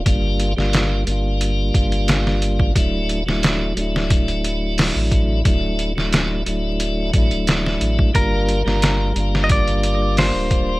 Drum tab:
HH |x-x-x-x-x-xxx-x-|x-x-x-x-xxx-o-x-|x-x-x-x-x-xxx-x-|x-x-x-x-xxx-o-x-|
SD |---oo-------oo--|---oo--o----o---|---oo-------oo--|---oo--o----o---|
BD |o---------o----o|o-------o-----o-|o---------o----o|o-------o-----o-|